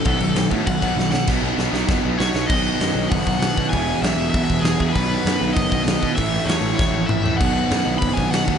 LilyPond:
<<
  \new Staff \with { instrumentName = "Overdriven electric guitar" } { \time 4/4 \key b \mixolydian \tempo 4 = 196 a'4. r8 fis''4. fis''8 | r2. cis''4 | dis''2 fis''4 fis''4 | gis''4 e''4 e''8 e''8 gis'4 |
b'2 dis''4 dis''4 | e''4 cis''4 cis''4 e''4 | fis''2 b''8 gis''8 fis''4 | }
  \new Staff \with { instrumentName = "Distorted electric guitar" } { \clef bass \time 4/4 \key b \mixolydian <b, fis b>8 <b, fis>8 <b, fis>8 <b, fis b>8 <b, fis>8 <b, fis b>8 <b, fis>8 <b, fis>8 | <b, fis b>8 <b, fis b>8 <b, fis b>8 <b, fis b>8 <b, fis b>8 <b, fis b>8 <b, fis b>8 <b, fis b>8 | <b, fis b>2.~ <b, fis b>8 <b, fis b>8 | <e, b, e>2.~ <e, b, e>8 <e, b, e>8 |
<b, fis b>2.~ <b, fis b>8 <b, fis b>8 | <a, e a>2.~ <a, e a>8 <a, e a>8 | <b, fis b>2.~ <b, fis b>8 <b, fis b>8 | }
  \new Staff \with { instrumentName = "Overdriven electric guitar" } { \clef bass \time 4/4 \key b \mixolydian <b, dis fis>8 <b, dis>8 <b, dis>8 <b, dis fis>8 <b, dis>8 <b, dis fis>8 <b, dis>8 <b, dis>8 | <b, fis b dis'>8 <b, fis b dis'>8 <b, fis b dis'>8 <b, fis b dis'>8 <b, fis b dis'>8 <b, fis b dis'>8 <b, fis b dis'>8 <b, fis b dis'>8 | <b, dis fis b dis'>1 | <e gis b e'>1 |
<b, dis fis b dis'>1 | <a, e a cis' e'>1 | <b, dis fis b dis'>1 | }
  \new Staff \with { instrumentName = "Picked electric bass" } { \clef bass \time 4/4 \key b \mixolydian b,,8 b,,8 b,,8 a,8 b,,8 b,,8 b,,4 | b,,8 b,,8 b,,8 b,,8 fis,,8 b,,8 b,,8 b,,8 | b,,4 fis,8 b,,8 fis,,8 b,,8 b,,8 b,8 | e,,4 b,,8 e,,8 b,,8 e,,8 e,,8 e,8 |
b,,4 fis,8 b,,8 fis,,8 b,,8 b,,8 b,8 | a,,4 e,8 a,,8 e,,8 a,,8 a,,8 a,8 | b,,4 fis,8 b,,8 fis,,8 b,,8 b,,8 dis,8 | }
  \new DrumStaff \with { instrumentName = "Drums" } \drummode { \time 4/4 <cymc bd>8 cymc8 <cymc sn>8 <cymc bd>8 <cymc bd>8 <cymc bd>8 sn8 sn8 | <cymc bd sn>4 sn8 sn8 <bd sn>4 sn8 sn8 | <cymc bd>4 <hho sn>4 <hho bd>8 bd8 <hho sn>8 bd8 | <hho bd>4 <hho sn>4 <hho bd>8 bd8 <hho sn>8 bd8 |
<hho bd>4 <hho sn>4 <hho bd>8 bd8 <hho sn>8 bd8 | <hho bd>4 <hho sn>4 <bd sn>8 tommh8 toml8 tomfh8 | <cymc bd>4 <hho sn>4 <hho bd>8 bd8 <hho sn>8 bd8 | }
>>